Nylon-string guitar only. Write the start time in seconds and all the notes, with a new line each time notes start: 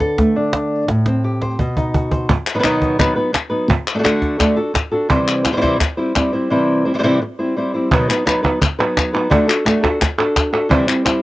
Already playing: D3
0.00 A4
0.18 A3
0.36 D4
0.89 A2
1.07 C4
1.24 G4
1.42 C5
1.59 B2
1.78 D#4
1.95 F#4
2.12 C5
2.30 muted nylon-string guitar stroke
2.54 D#3 F#3 B3 D#4 B4
2.59 D#3 F#3 B3 D#4 B4
2.63 B2 D#3 F#3 B3 D#4 B4
2.99 B2 D#3 F#3 B3 D#4 B4
3.16 F#3 B3 D#4 B4
3.33 muted nylon-string guitar stroke
3.50 F#3 B3 D#4 B4
3.68 muted nylon-string guitar stroke
3.95 A3 D4 F#4 A4
3.99 A3 D4 F#4 A4
4.04 D3 A3 D4 F#4 A4
4.39 D3 A3 D4 F#4 A4
4.56 D4 F#4 A4
4.74 muted nylon-string guitar stroke
4.91 D4 F#4 A4
5.09 C3 E3 G3 C4 E4 C5
5.44 G3 C4 E4 C5
5.52 E3 G3 C4 E4 C5
5.57 E3 G3 C4 E4 C5
5.61 C3 E3 G3 C4 E4 C5
5.79 muted nylon-string guitar stroke
5.97 G3 C4 E4 C5
6.15 G3 C4 E4 C5
6.33 G3 C4 E4 C5
6.50 C3 E3 G3 C4 E4 C5
6.85 G3 C4 E4 C5
6.94 E3 G3 C4 E4 C5
6.99 E3 G3 C4 E4 C5
7.03 C3 E3 G3 C4 E4 C5
7.21 muted nylon-string guitar stroke
7.39 G3 C4 E4 C5
7.57 G3 C4 E4 C5
7.74 G3 C4 E4 C5
7.91 B2 D#3 F#3 B3 D#4 B4
8.08 F#3 B3 D#4 B4
8.25 F#3 B3 D#4 B4
8.43 F#3 B3 D#4 B4
8.61 muted nylon-string guitar stroke
8.79 F#3 B3 D#4 B4
9.13 F#3 B3 D#4 B4
9.30 D3 A3 D4 F#4 A4
9.48 D4 F#4 A4
9.65 A3 D4 F#4 A4
9.83 D4 F#4 A4
10.01 muted nylon-string guitar stroke
10.18 D4 F#4 A4
10.53 D4 F#4 A4
10.69 C3 E3 G3 C4 E4 C5
10.87 G3 C4 E4 C5
11.05 G3 C4 E4 C5